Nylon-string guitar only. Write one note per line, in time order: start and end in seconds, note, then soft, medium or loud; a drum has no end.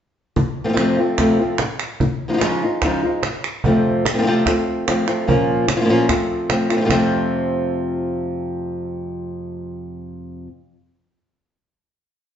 0.36 muted nylon-string guitar stroke medium
0.64 0.67 C3 medium
0.64 0.68 F3 medium
0.64 0.68 A3 medium
0.64 0.68 C4 medium
0.64 0.68 F4 medium
0.68 0.72 C3 medium
0.68 0.72 F3 medium
0.68 0.73 A3 medium
0.68 0.73 C4 medium
0.68 0.73 F4 medium
0.73 0.77 C3 medium
0.73 0.77 F3 medium
0.73 0.77 A3 medium
0.73 0.77 C4 medium
0.73 0.77 F4 medium
0.78 0.97 F2 medium
0.78 0.97 C3 medium
0.78 0.97 F3 medium
0.78 0.98 A3 medium
0.78 0.97 C4 medium
0.78 0.97 F4 medium
0.98 1.18 F3 soft
0.98 1.18 A3 soft
0.98 1.18 C4 medium
0.98 1.18 F4 medium
1.19 1.38 F2 medium
1.19 1.38 C3 medium
1.19 1.38 F3 medium
1.19 1.39 A3 medium
1.19 1.39 C4 medium
1.19 1.38 F4 medium
1.39 1.60 F3 soft
1.39 1.60 A3 soft
1.39 1.59 C4 soft
1.39 1.59 F4 soft
1.61 muted nylon-string guitar stroke medium
2.01 muted nylon-string guitar stroke medium
2.28 2.32 F3 medium
2.28 2.32 G#3 medium
2.28 2.33 D#4 soft
2.28 2.33 F4 medium
2.33 2.36 F3 medium
2.33 2.37 G#3 medium
2.33 2.37 D#4 medium
2.33 2.37 F4 medium
2.37 2.41 F3 medium
2.37 2.41 G#3 medium
2.37 2.42 D#4 medium
2.37 2.42 F4 medium
2.42 2.61 C#3 medium
2.42 2.62 F3 medium
2.42 2.62 G#3 medium
2.42 2.62 D#4 medium
2.42 2.61 F4 medium
2.63 2.83 G#3 soft
2.63 2.83 D#4 soft
2.63 2.82 F4 medium
2.84 3.03 C#3 medium
2.84 3.03 F3 medium
2.84 3.04 G#3 medium
2.84 3.03 D#4 medium
2.84 3.02 F4 medium
3.03 3.24 G#3 soft
3.03 3.23 D#4 soft
3.03 3.23 F4 medium
3.25 muted nylon-string guitar stroke medium
3.64 4.05 F2 medium
3.64 4.05 C3 medium
3.64 4.05 F3 medium
3.64 4.05 A3 medium
3.64 4.05 C4 medium
3.64 4.06 F4 medium
4.06 muted nylon-string guitar stroke medium
4.13 4.16 C3 medium
4.13 4.17 F3 medium
4.13 4.17 A3 medium
4.13 4.18 C4 medium
4.13 4.18 F4 medium
4.17 4.21 C3 medium
4.17 4.21 F3 medium
4.17 4.22 A3 medium
4.17 4.22 C4 medium
4.17 4.22 F4 medium
4.22 4.26 C3 medium
4.22 4.26 F3 medium
4.22 4.26 A3 medium
4.22 4.27 C4 medium
4.22 4.27 F4 medium
4.26 4.46 F2 medium
4.26 4.46 C3 medium
4.26 4.46 F3 medium
4.26 4.46 A3 medium
4.26 4.46 C4 medium
4.26 4.45 F4 medium
4.46 4.86 F3 soft
4.46 4.87 A3 soft
4.46 4.87 C4 soft
4.46 4.86 F4 medium
4.88 5.07 F3 medium
4.88 5.07 A3 medium
4.88 5.07 C4 medium
4.88 5.06 F4 medium
5.07 5.26 F3 soft
5.07 5.28 A3 medium
5.07 5.27 C4 medium
5.07 5.27 F4 medium
5.27 5.67 A#2 medium
5.27 5.67 F3 medium
5.27 5.68 A#3 medium
5.27 5.68 C#4 medium
5.27 5.68 F4 medium
5.68 muted nylon-string guitar stroke medium
5.76 5.79 F3 medium
5.76 5.79 A#3 soft
5.76 5.80 C#4 medium
5.76 5.80 F4 medium
5.80 5.83 F3 medium
5.80 5.84 A#3 medium
5.80 5.84 C#4 medium
5.80 5.84 F4 medium
5.84 5.88 F3 medium
5.84 5.89 A#3 medium
5.84 5.89 C#4 medium
5.84 5.89 F4 medium
5.89 6.09 A#2 medium
5.89 6.09 F3 medium
5.89 6.09 A#3 medium
5.89 6.09 C#4 medium
5.89 6.07 F4 medium
6.08 6.49 F3 soft
6.08 6.50 A3 soft
6.08 6.49 C4 soft
6.08 6.49 F4 medium
6.50 6.69 F3 medium
6.50 6.70 A3 medium
6.50 6.69 C4 medium
6.50 6.68 F4 medium
6.70 6.76 F3 soft
6.70 6.76 A3 soft
6.70 6.76 C4 medium
6.70 6.77 F4 medium
6.76 6.80 C3 soft
6.76 6.80 F3 medium
6.76 6.80 A3 medium
6.76 6.80 C4 soft
6.76 6.81 F4 medium
6.81 6.84 C3 medium
6.81 6.84 F3 medium
6.81 6.85 A3 medium
6.81 6.85 C4 medium
6.81 6.85 F4 medium
6.85 6.89 C3 medium
6.85 6.89 F3 medium
6.85 6.89 A3 medium
6.85 6.90 C4 medium
6.85 6.90 F4 medium
6.90 10.47 F2 medium
6.90 10.47 C3 medium
6.90 10.47 F3 medium
6.90 10.47 A3 medium
6.90 10.47 C4 medium
6.90 10.48 F4 medium